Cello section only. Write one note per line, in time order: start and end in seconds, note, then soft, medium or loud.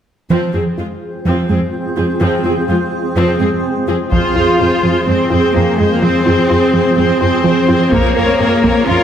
0.31 0.39 F2 soft
0.55 0.63 F2 soft
0.78 0.86 F2 soft
1.26 1.34 F2 soft
1.50 1.58 F2 soft
1.97 2.05 F2 soft
2.21 2.29 F2 medium
2.45 2.53 F2 soft
2.69 2.77 F2 soft
3.17 3.25 F2 medium
3.41 3.49 F2 soft
3.88 3.96 F2 soft
4.13 5.03 F4 medium
5.07 5.55 C4 medium
5.54 5.78 A#3 soft
5.78 5.90 G#3 medium
5.91 6.02 A#3 soft
6.02 6.95 C4 medium
6.96 7.90 C4 medium
7.92 8.87 A#3 medium
8.87 9.03 F4 medium